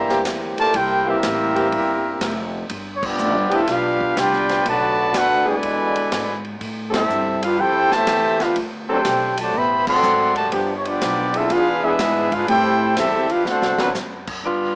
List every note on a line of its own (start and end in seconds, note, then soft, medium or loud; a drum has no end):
0.00 0.23 G2 medium
0.00 0.21 E3 loud
0.00 0.21 G3 loud
0.00 0.21 A#3 loud
0.00 0.22 G4 medium
0.00 0.22 C5 medium
0.00 0.22 E5 medium
0.00 0.22 A#5 loud
0.09 0.71 E3 loud
0.09 0.71 A#3 medium
0.09 0.71 C4 medium
0.09 0.71 G4 loud
0.09 snare medium
0.25 0.56 E2 loud
0.25 kick soft
0.25 snare medium
0.25 hi-hat pedal medium
0.25 ride medium
0.57 0.73 A3 medium
0.57 0.74 F4 medium
0.57 0.74 A#4 medium
0.57 0.75 D5 medium
0.57 0.74 A5 loud
0.57 muted upright bass stroke soft
0.57 ride medium
0.74 1.22 C2 medium
0.74 1.07 A#3 medium
0.74 1.06 E4 medium
0.74 1.08 E4 medium
0.74 1.07 G4 medium
0.74 1.08 A#4 medium
0.74 1.08 C5 medium
0.74 1.08 G5 loud
0.74 kick soft
0.74 ride medium
1.07 1.18 E3 loud
1.07 2.54 G3 medium
1.07 1.18 A#3 medium
1.07 2.54 A#3 medium
1.07 1.18 C4 medium
1.07 2.55 C4 medium
1.07 2.54 E4 medium
1.07 1.18 G4 loud
1.07 2.55 G4 medium
1.07 2.55 A#4 medium
1.07 2.55 E5 loud
1.23 1.71 A1 loud
1.23 kick soft
1.23 snare medium
1.23 hi-hat pedal medium
1.23 ride medium
1.55 1.66 E3 loud
1.55 1.67 A#3 loud
1.55 1.67 C4 medium
1.55 1.67 G4 loud
1.55 ride medium
1.72 2.19 G1 medium
1.72 kick soft
1.72 ride medium
2.21 2.68 F1 loud
2.21 kick soft
2.21 snare medium
2.21 hi-hat pedal medium
2.21 ride medium
2.70 3.17 G1 loud
2.70 kick soft
2.70 ride medium
2.95 3.04 C#5 medium
3.03 3.52 F3 medium
3.03 3.52 B3 medium
3.03 3.53 B3 medium
3.03 3.52 D4 medium
3.03 3.53 F4 medium
3.03 3.53 G4 medium
3.03 3.53 D5 medium
3.03 kick loud
3.03 crash medium
3.19 3.34 A1 loud
3.19 hi-hat pedal medium
3.34 3.50 G1 medium
3.49 3.66 F1 medium
3.49 3.61 F3 loud
3.49 3.61 B3 loud
3.49 3.61 D4 loud
3.49 3.67 E4 medium
3.49 3.62 G4 loud
3.49 ride medium
3.54 3.69 C4 medium
3.54 3.69 F4 medium
3.54 3.69 A4 medium
3.54 3.69 E5 medium
3.67 4.15 B1 medium
3.67 4.17 B3 medium
3.67 4.16 D4 medium
3.67 4.18 D4 medium
3.67 4.17 F4 medium
3.67 4.18 G4 medium
3.67 4.18 B4 medium
3.67 4.18 F5 loud
3.67 kick soft
3.67 snare soft
3.67 ride medium
4.01 kick medium
4.17 4.64 C2 loud
4.17 4.63 B3 medium
4.17 4.63 D4 medium
4.17 4.64 F4 loud
4.17 4.63 G4 medium
4.17 4.64 B4 medium
4.17 4.64 D5 medium
4.17 4.64 G5 loud
4.17 kick soft
4.17 snare medium
4.17 hi-hat pedal medium
4.17 ride medium
4.33 snare soft
4.49 snare medium
4.49 ride medium
4.65 5.13 B1 loud
4.65 5.14 D3 loud
4.65 5.14 F#3 loud
4.65 5.13 A3 medium
4.65 5.16 F#4 loud
4.65 5.16 B4 loud
4.65 5.16 D5 loud
4.65 5.16 A5 loud
4.65 kick soft
4.65 ride medium
5.14 5.62 D2 loud
5.14 5.47 A3 medium
5.14 5.47 D4 medium
5.14 5.49 D4 medium
5.14 5.47 F#4 medium
5.14 5.49 A4 medium
5.14 5.49 F#5 loud
5.14 kick soft
5.14 snare medium
5.14 hi-hat pedal medium
5.14 ride medium
5.18 5.48 B4 medium
5.45 6.41 B2 medium
5.45 6.42 D3 medium
5.45 5.57 E3 loud
5.45 6.41 G#3 medium
5.45 5.57 B3 medium
5.45 5.57 D4 medium
5.45 5.57 G#4 loud
5.45 6.42 B4 medium
5.45 6.42 G#5 medium
5.49 6.42 E4 medium
5.49 6.42 D5 medium
5.63 5.94 E2 medium
5.63 kick soft
5.63 ride medium
5.96 muted upright bass stroke soft
5.96 ride medium
6.12 6.59 G#2 loud
6.12 kick soft
6.12 snare medium
6.12 hi-hat pedal medium
6.12 ride medium
6.44 ride medium
6.61 7.08 A2 medium
6.61 kick soft
6.61 ride medium
6.90 7.03 G3 loud
6.90 7.03 C4 medium
6.90 7.03 E4 medium
6.90 7.39 E4 medium
6.90 7.02 A4 loud
6.90 snare loud
6.90 ride medium
6.94 7.40 G3 medium
6.94 7.40 C4 medium
6.94 7.40 G4 medium
6.94 7.40 A4 medium
6.94 7.40 E5 medium
7.09 7.57 G2 loud
7.09 hi-hat pedal medium
7.43 7.59 D4 medium
7.43 7.59 F4 medium
7.43 7.59 G4 medium
7.43 7.59 B4 medium
7.43 7.59 F5 medium
7.43 ride medium
7.58 7.89 F2 medium
7.58 7.91 C4 medium
7.58 7.91 E4 medium
7.58 7.92 E4 medium
7.58 7.91 G4 medium
7.58 7.92 A4 medium
7.58 7.92 C5 medium
7.58 7.92 G5 loud
7.58 kick soft
7.92 8.41 C3 loud
7.92 8.41 E3 loud
7.92 8.41 A3 loud
7.92 8.41 G4 loud
7.92 8.41 C5 loud
7.92 8.41 E5 loud
7.92 8.41 A5 loud
7.92 muted upright bass stroke soft
7.92 snare medium
8.07 8.55 E2 loud
8.07 kick soft
8.07 snare medium
8.07 hi-hat pedal medium
8.07 ride medium
8.40 8.57 D4 medium
8.40 8.58 F4 medium
8.40 8.57 G4 medium
8.40 8.57 B4 medium
8.40 8.57 F5 medium
8.40 snare medium
8.40 ride medium
8.56 9.04 D2 loud
8.56 kick soft
8.56 ride medium
8.89 9.00 F#3 loud
8.89 9.37 A3 medium
8.89 9.00 C4 loud
8.89 9.37 C4 medium
8.89 9.01 D4 loud
8.89 9.37 D4 medium
8.89 9.37 G4 medium
8.89 9.00 A4 loud
8.89 9.37 C5 medium
8.89 9.37 G5 medium
8.94 9.37 A4 medium
9.05 9.53 B1 loud
9.05 kick soft
9.05 snare medium
9.05 hi-hat pedal medium
9.05 ride medium
9.38 9.55 C3 medium
9.38 9.55 F#3 medium
9.38 9.55 A3 medium
9.38 9.56 F#4 medium
9.38 9.55 C5 medium
9.38 9.56 D5 medium
9.38 9.55 A5 medium
9.38 ride medium
9.54 10.01 A1 medium
9.54 9.88 B3 loud
9.54 9.88 G4 medium
9.54 9.88 C5 medium
9.54 9.88 E5 loud
9.54 9.88 B5 loud
9.54 kick soft
9.87 10.33 F#3 loud
9.87 10.33 A3 loud
9.87 10.33 C4 loud
9.87 10.33 A4 loud
9.87 10.33 D5 loud
9.87 10.33 F#5 loud
9.87 10.33 C6 loud
9.87 kick loud
9.87 crash medium
10.03 10.51 G#1 loud
10.03 hi-hat pedal medium
10.36 10.51 C3 medium
10.36 10.51 F#3 medium
10.36 10.51 A3 medium
10.36 10.51 F#4 medium
10.36 10.52 C5 medium
10.36 10.51 D5 medium
10.36 10.51 A5 medium
10.36 ride medium
10.51 10.99 G1 loud
10.51 10.74 F3 medium
10.51 10.74 B3 medium
10.51 10.74 D4 medium
10.51 10.74 G4 loud
10.51 kick soft
10.51 ride medium
10.77 10.86 C#5 medium
10.84 11.34 F3 medium
10.84 11.34 B3 medium
10.84 11.35 B3 medium
10.84 11.33 D4 medium
10.84 11.34 F4 medium
10.84 11.35 G4 medium
10.84 11.35 D5 loud
10.84 ride medium
11.01 11.48 B1 loud
11.01 kick soft
11.01 snare medium
11.01 hi-hat pedal medium
11.01 ride medium
11.34 11.80 E3 loud
11.34 11.80 B3 medium
11.34 11.51 C4 medium
11.34 11.80 D4 loud
11.34 11.50 E4 medium
11.34 11.51 F4 medium
11.34 11.80 G#4 loud
11.34 11.51 A4 medium
11.34 11.51 E5 medium
11.34 ride medium
11.50 11.97 E2 loud
11.50 11.84 D4 loud
11.50 11.83 F4 medium
11.50 11.84 G#4 medium
11.50 11.84 B4 medium
11.50 11.84 F5 loud
11.50 kick soft
11.50 ride medium
11.82 11.94 E3 loud
11.82 12.32 G#3 medium
11.82 12.32 B3 medium
11.82 11.94 B3 loud
11.82 11.94 D4 loud
11.82 12.32 D4 medium
11.82 12.32 E4 medium
11.82 11.94 G#4 loud
11.82 12.32 G#4 medium
11.82 12.32 B4 medium
11.82 12.33 E5 loud
11.99 12.46 G#2 medium
11.99 kick soft
11.99 snare medium
11.99 hi-hat pedal medium
11.99 ride medium
12.31 12.49 D4 medium
12.31 12.48 F4 medium
12.31 12.48 G#4 medium
12.31 12.49 B4 medium
12.31 12.49 F5 loud
12.31 kick medium
12.31 ride medium
12.47 12.95 A2 loud
12.47 12.70 G3 medium
12.47 12.70 C4 medium
12.47 12.93 C4 loud
12.47 12.93 E4 loud
12.47 12.71 E4 medium
12.47 12.95 E4 loud
12.47 12.93 G4 loud
12.47 12.70 A4 medium
12.47 12.94 A4 loud
12.47 12.94 C5 loud
12.47 12.94 G5 loud
12.47 kick soft
12.47 ride medium
12.96 13.44 E2 loud
12.96 13.30 G3 medium
12.96 13.19 G3 medium
12.96 13.29 C4 medium
12.96 13.20 C4 medium
12.96 13.31 C4 medium
12.96 13.29 E4 medium
12.96 13.20 E4 medium
12.96 13.31 G4 medium
12.96 13.20 A4 medium
12.96 13.31 A4 medium
12.96 13.31 E5 loud
12.96 kick soft
12.96 snare medium
12.96 hi-hat pedal medium
12.96 ride medium
13.30 13.47 D4 medium
13.30 13.46 F4 medium
13.30 13.47 G4 medium
13.30 13.47 B4 medium
13.30 13.47 F5 medium
13.30 ride medium
13.45 13.61 D2 medium
13.45 13.91 A3 medium
13.45 13.91 C4 medium
13.45 13.93 D4 medium
13.45 13.91 F#4 medium
13.45 13.93 F#5 loud
13.45 snare medium
13.49 13.93 A4 medium
13.49 13.93 C5 medium
13.61 13.77 C2 medium
13.61 snare medium
13.78 13.93 A1 medium
13.78 13.90 F#3 loud
13.78 13.89 C4 loud
13.78 13.89 D4 medium
13.78 13.89 B4 loud
13.78 snare loud
13.94 14.42 F#2 loud
13.94 snare medium
13.94 hi-hat pedal medium
14.27 kick medium
14.27 crash medium
14.43 14.74 G2 medium
14.43 14.75 G3 medium
14.43 14.75 B3 medium
14.43 14.75 D4 medium
14.43 14.75 F4 loud
14.43 kick soft